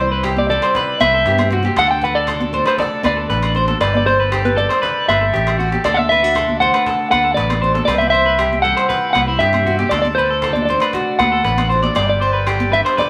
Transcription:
Already playing: C2 C3 C4 E4 G4 C5
0.00 E4 C5
0.11 B4, cajon slap
0.23 G4, cajon bass, cajon slap, low agogo
0.37 D5, high conga
0.49 G3 A4 D5, low conga
0.62 C5, cajon slap, low agogo
0.75 B4 C5, cajon bass, low conga
1.00 C2 B4 E5, cajon slap, high conga, low agogo
1.15 A4
1.26 G2 B2 G4, cajon bass
1.38 cajon slap, high conga, low agogo
1.51 C3 F#4, low conga
1.63 G4, cajon slap, high conga
1.76 D2 D3 D4 F#4 A4 F#5, cajon bass, cajon slap, low agogo
1.91 G5
2.02 D4 B4 F#5, low conga
2.15 A4 D5
2.27 F#4 A4, cajon bass, cajon slap, low agogo
2.40 high conga
2.53 A3 C5, low conga
2.66 B4 C5, cajon slap, low agogo
2.78 A4 D5, cajon bass, low conga
2.92 cajon slap
3.03 D2 B4 D5, cajon slap, high conga, low agogo
3.17 A4
3.30 A1 A2 B4, cajon bass
3.42 cajon slap, low agogo
3.55 F#4 C5, low conga
3.68 A4, cajon slap, high conga
3.80 G1 G3 A3 G4 A4 B4 D5, cajon bass, cajon slap, low agogo
3.94 D5, high conga
4.06 G4 C5, low conga
4.20 B4
4.32 G4 A4, cajon bass, cajon slap, low agogo
4.45 B4, high conga
4.56 D4 A4 D5, low conga
4.69 C5, cajon slap, low agogo
4.82 A4 B4, cajon bass, low conga
4.97 cajon slap
5.08 G1 B4 E5, cajon slap, high conga, low agogo
5.21 A4
5.34 A1 D3 G4, cajon bass
5.47 cajon slap, low agogo
5.59 F#4 A4, low conga
5.72 G4, cajon slap, high conga
5.84 D2 D3 D4 F#4 A4 D5, cajon bass, cajon slap, low agogo
5.94 E5 F#5, high conga
6.09 C4 B4 E5, cajon slap, low conga
6.23 D4 F#4
6.35 F#4 A4, cajon bass, cajon slap, low agogo
6.48 high conga
6.60 A3 C5 F#5, low conga
6.74 B4, cajon slap, low agogo
6.86 A4, cajon bass, low conga
7.00 cajon slap
7.11 D2 B4 F#5, cajon slap, high conga, low agogo
7.25 A4
7.34 A1 A2 B4 D5, cajon bass
7.50 cajon slap, high conga, low agogo
7.62 F#4 C5, low conga
7.75 A4, cajon slap, high conga
7.85 C2 C3 C4 E4 G4 B4 D5, cajon bass, cajon slap, low agogo
7.89 C5
7.98 E5, high conga
8.10 C5 E5, low conga
8.15 E4
8.26 B4
8.39 G4, cajon bass, cajon slap, low agogo
8.53 high conga
8.62 G3 A4 F#5, low conga
8.77 C5, cajon slap, low agogo
8.89 B4 C5, cajon bass, low conga
9.13 C2 B4 F#5, cajon slap, high conga, low agogo
9.28 E4
9.39 G2 C3 G4 E5, cajon bass
9.53 cajon slap, high conga, low agogo
9.66 F#4 G4, low conga
9.79 G4, cajon slap, high conga
9.89 D2 D3 F#4 A4 D5, cajon bass, cajon slap, low agogo
9.94 D4
10.02 D5, high conga
10.15 B4 C5, low conga
10.19 muted steel-string acoustic guitar stroke
10.30 A4, cajon slap
10.42 F#4 A4, cajon bass, cajon slap, low agogo
10.53 D5, high conga
10.65 D5, low conga
10.70 A3 C5
10.80 B4, cajon slap, low agogo
10.93 F#4, muted steel-string acoustic guitar stroke, cajon bass, low conga
11.19 D2 B4 F#5, cajon slap, high conga, low agogo
11.32 A4
11.45 A1 A2 B4, cajon bass
11.58 cajon slap, high conga, low agogo
11.70 F#4 C5, low conga
11.83 D5, cajon slap, high conga
11.95 G1 G3 B3 G4 A4 D5, cajon bass, cajon slap, low agogo
12.10 D5
12.21 G4 C5, cajon slap
12.33 B4
12.47 G4 A4, cajon bass, cajon slap, low agogo
12.60 high conga
12.72 D4 B4 E5, low conga
12.85 C5, cajon slap, low agogo
12.97 A4 B4 D5, cajon bass, low conga

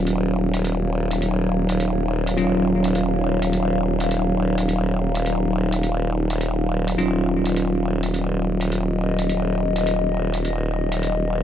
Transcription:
Already playing: D#1 F#3 C#4 D#4 F4 C#5 F5
0.07 closed hi-hat
0.54 closed hi-hat
0.65 closed hi-hat
1.11 closed hi-hat
1.22 closed hi-hat
1.69 closed hi-hat
1.80 closed hi-hat
2.27 closed hi-hat
2.37 F#3 C#4 D#4 F4, closed hi-hat
2.84 closed hi-hat
2.95 closed hi-hat
3.42 closed hi-hat
3.53 closed hi-hat
4.00 closed hi-hat
4.11 closed hi-hat
4.58 closed hi-hat
4.69 closed hi-hat
5.15 closed hi-hat
5.26 closed hi-hat
5.73 closed hi-hat
5.83 closed hi-hat
6.30 closed hi-hat
6.41 closed hi-hat
6.88 closed hi-hat
6.98 D#1 F#3 C#4 D#4 F4, closed hi-hat
7.46 closed hi-hat
7.56 closed hi-hat
8.03 closed hi-hat
8.13 D#5, closed hi-hat
8.61 closed hi-hat
8.72 closed hi-hat
9.19 closed hi-hat
9.29 closed hi-hat
9.76 closed hi-hat
9.87 closed hi-hat
10.34 closed hi-hat
10.45 closed hi-hat
10.92 closed hi-hat
11.03 closed hi-hat

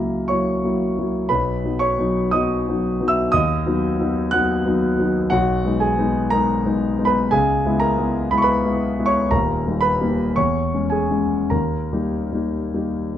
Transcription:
Already playing: C#2 F#3 A#3 E4 A#4 A#5
0.28 F#3 A#3 E4 C#5 C#6
0.64 F#3 A#3 E4
0.98 F#3 A#3 E4
1.29 B1 B4 B5
1.64 F#3 B3 D#4
1.79 C#5 C#6
1.99 F#3 B3 D#4
2.31 F#3 B3 D#4 D#5 D#6
2.68 F#3 B3 D#4
3.01 F#3 B3 D#4
3.08 E5 E6
3.32 D#2 D#5 D#6
3.66 F#3 B3 D#4
4.00 F#3 B3 D#4
4.31 F#3 B3 D#4 F#5 F#6
4.66 F#3 B3 D#4
4.99 F#3 B3 D#4
5.30 B1 F#4 F#5
5.65 G#3 B3 D#4
5.80 G#4 G#5
5.98 G#3 B3 D#4
6.30 G#3 B3 D#4 A#4 A#5
6.65 G#3 B3 D#4
6.98 G#3 B3 D#4
7.05 B4 B5
7.31 C#2 G#4 G#5
7.66 G#3 B3 E4
7.80 A#4 A#5
7.98 G#3 B3 E4
8.31 G#3 B3 E4 B5
8.38 C#6
8.42 B4 B5
8.65 G#3 B3 E4
8.99 G#3 B3 E4
9.06 C#5 C#6
9.31 D#1 D#2 A#4 A#5
9.67 G3 A#3 D#4
9.81 B4 B5
10.01 G3 A#3 D#4
10.36 E2 C#5 C#6
10.74 G#3 C#4
10.90 G#4 G#5
11.11 G#3 C#4
11.50 D#2 A#4 A#5
11.93 G3 A#3 D#4
12.33 G3 A#3 D#4
12.74 G3 A#3 D#4

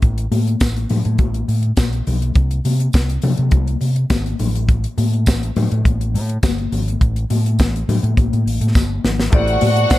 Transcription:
0.02 A1, kick, closed hi-hat, muted conga
0.18 closed hi-hat
0.32 A2, open hi-hat, high conga
0.47 closed hi-hat
0.60 A1, kick, snare, closed hi-hat, tambourine
0.76 closed hi-hat
0.89 A2, open hi-hat, high conga, low conga
1.05 A2, closed hi-hat
1.18 A1, kick, closed hi-hat, muted conga, high conga
1.34 closed hi-hat
1.48 A2, open hi-hat
1.63 closed hi-hat
1.77 A#1, kick, snare, closed hi-hat, tambourine, high conga
1.93 closed hi-hat
2.07 B1, open hi-hat, high conga, low conga
2.22 closed hi-hat
2.35 C2, kick, closed hi-hat
2.51 closed hi-hat
2.65 C3, open hi-hat, high conga
2.80 closed hi-hat
2.93 C2, kick, snare, closed hi-hat, tambourine
3.09 closed hi-hat
3.22 C3, open hi-hat, high conga, low conga
3.37 C3, closed hi-hat
3.51 C2, kick, closed hi-hat, muted conga, high conga
3.68 closed hi-hat
3.81 C3, open hi-hat, muted conga
3.96 closed hi-hat
4.10 G#1, kick, snare, closed hi-hat, tambourine, high conga
4.26 closed hi-hat
4.39 A1, open hi-hat, high conga, low conga
4.55 closed hi-hat
4.68 kick, closed hi-hat, muted conga
4.84 closed hi-hat
4.98 A2, open hi-hat, high conga
5.13 closed hi-hat
5.26 A1, kick, snare, closed hi-hat, tambourine
5.43 closed hi-hat
5.56 A2, open hi-hat, high conga, low conga
5.72 A2, closed hi-hat
5.85 A1, kick, closed hi-hat, muted conga, high conga
6.01 closed hi-hat
6.14 A2, open hi-hat, muted conga
6.29 closed hi-hat
6.43 G1, kick, snare, closed hi-hat, tambourine, muted conga, high conga
6.58 closed hi-hat
6.72 G#1, open hi-hat, high conga, low conga
6.88 closed hi-hat
7.01 A1, kick, closed hi-hat
7.16 closed hi-hat
7.30 A2, open hi-hat, muted conga, high conga
7.46 closed hi-hat
7.59 A1, kick, snare, closed hi-hat, tambourine
7.76 closed hi-hat
7.88 A2, open hi-hat, high conga, low conga
8.03 A2, closed hi-hat
8.17 A1, kick, closed hi-hat, high conga
8.33 A2, closed hi-hat
8.46 A1, open hi-hat
8.61 A2, closed hi-hat
8.75 G1, kick, snare, tambourine, high conga
9.04 G#1, snare, muted conga, high conga, low conga
9.20 snare
9.30 A1 A3 E4 G4 A4 C5 D5, kick, closed hi-hat, muted conga
9.35 F#4 F#5
9.48 closed hi-hat
9.61 A2, open hi-hat, high conga
9.77 closed hi-hat
9.90 A1 C5, kick, snare, closed hi-hat, tambourine, muted conga

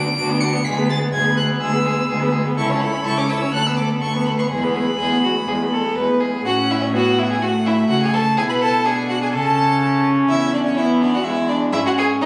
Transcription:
Already playing: D2 D7
0.05 B3 D4
0.16 D2 D4 F#4
0.30 B3 D4
0.41 D4 F#4 C#7
0.53 B3 D4
0.65 D2 G#3 G#4 B6
0.77 B3 B4
0.89 G#3 G#4 A6
1.02 B3 B4
1.12 D2 G#3 G#4 G#6
1.24 B3 B4
1.37 G#3 G#4 F#6
1.49 B3 B4
1.61 D2 G#3 G#4 E6
1.73 B3 B4
1.84 G#3 G#4
1.97 B3 B4
2.09 D2 G#3 G#4
2.20 B3 B4
2.32 G#3 G#4
2.44 B3 B4
2.56 C#2 E4 A4 C#6
2.69 C#4 C#5 A5
2.80 E4 A4 B5
2.92 C#4 C#5
3.04 C#2 E4 A4 C#6
3.17 C#4 C#5 D6
3.29 E4 A4 E6
3.41 C#4 C#5
3.52 D2 A3 A4 F#6
3.66 B3 B4 E6
3.77 A3 A4 D6
3.90 B3 B4
4.00 D2 A3 A4 C#6
4.14 B3 B4
4.25 A3 A4 B5
4.38 B3 B4 C#6
4.50 E2 G#3 G#4 B5
4.63 B3 B4
4.74 G#3 G#4
4.87 B3 B4
4.99 E2 G#3 G#4
5.12 B3
5.24 G#3 F#4
5.36 B3
5.48 E2 G#3 G#4
5.62 B3
5.72 G#3 A4
5.85 B3
5.95 E2 G#3 B4
6.09 B3
6.20 G#3 G#4
6.34 B3
6.45 A2 C#4 F#4 F#5
6.71 E4 E5
6.81 C#4 C#5
6.94 B3 F#4 F#5
7.18 E4 E5
7.31 G#4 G#5
7.42 A3 F#4 F#5
7.66 E4 E5
7.90 C#3 F#4 F#5
8.03 G#4 G#5
8.13 A4 A5
8.37 B2 E4 G#4 G#5
8.50 B4 B5
8.61 A4 A5
8.85 D4 G#4 G#5
9.09 F#4 F#5
9.21 G#4 G#5
9.34 C#3 C#4 A4 A5
10.28 E2 E4 E5
10.53 D4 D5
10.65 C#4 C#5
10.77 B3 E4 E5
11.01 D4 D5
11.14 F#4 F#5
11.24 G#3 E4 E5
11.48 D4 D5
11.73 G#2 C#4 E4 E5
11.86 F#4 F#5
11.98 G#4 G#5
12.21 F#2 B3 D#4 D#5

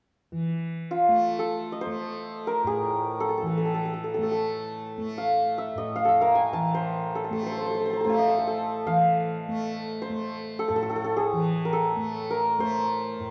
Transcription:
0.32 E3
0.91 F4
1.09 A3
1.39 A4
1.72 D#5
1.81 C5
1.86 A3
2.47 A#4
2.64 A2 G#4
3.20 A4
3.29 A4
3.38 A4
3.42 E3
3.47 A4
3.58 A4
3.65 A4
3.74 A4
3.85 A4
3.93 A4
4.04 A4
4.14 A4
4.18 A3
4.23 A4
4.32 A4
4.98 A3
5.18 F5
5.58 E5
5.75 A2 D#5
5.96 F5
6.05 A4 E5
6.21 A#4 F5
6.35 G#5
6.53 E3 A5
6.74 C5
7.15 A4
7.24 A4
7.30 A3 A4
7.43 A4 C5
7.52 A4
7.57 C5
7.61 A4
7.65 C5
7.71 A4 C5
7.80 A4
7.86 C5
7.90 A4 C5
7.97 A5 A#5
8.01 A4 C5
8.06 A3 A4 F5 G#5
8.14 E5
8.18 A4 D#5
8.28 A4
8.38 A4
8.47 A4
8.86 E3 F5
9.48 A3
10.02 C5
10.10 A3
10.59 A4
10.68 A2 A4
10.76 A4
10.82 A4
10.90 A4
10.96 A4
11.04 A4
11.17 G#4
11.33 E3
11.65 A#4
11.73 A4
11.96 A3
12.30 A#4
12.59 A3 C5
13.20 A2

